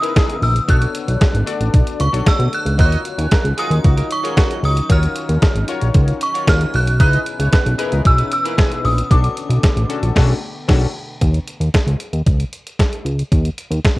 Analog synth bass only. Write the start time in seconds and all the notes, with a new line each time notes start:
0.42 A#1
0.68 B1
1.08 B1
1.34 G#1
1.61 A1
1.74 B1
2.00 C#2
2.13 B1
2.39 B2
2.65 C#2
2.79 D#2
3.18 D#2
3.44 C#2
3.70 D#2
3.84 C#2
4.63 C#2
4.90 D#2
5.29 D#2
5.55 G#1
5.82 A#1
5.95 C#2
6.47 D#2
6.74 B1
7.00 C#2
7.39 C#2
7.66 B1
7.92 C#2
8.05 B1
8.84 A#1
9.11 B1
9.49 B1
9.76 A1
10.02 A#1
10.16 B1
10.69 B1
11.21 D#2
11.60 D#2
11.87 C#2
12.13 D#2
12.26 C#2
13.05 C#2
13.32 D#2
13.71 D#2